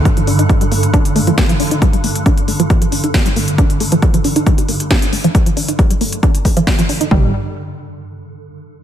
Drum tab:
HH |xxoxxxoxxxoxxxox|xxoxxxoxxxoxxxox|xxoxxxoxxxoxxxox|xxoxxxoxxxoxxxox|
SD |------------o---|------------o---|------------o---|------------o---|
FT |----------------|----------------|----------------|----------------|
BD |o---o---o---o---|o---o---o---o---|o---o---o---o---|o---o---o-o-o---|

HH |----------------|
SD |----------------|
FT |o---------------|
BD |o---------------|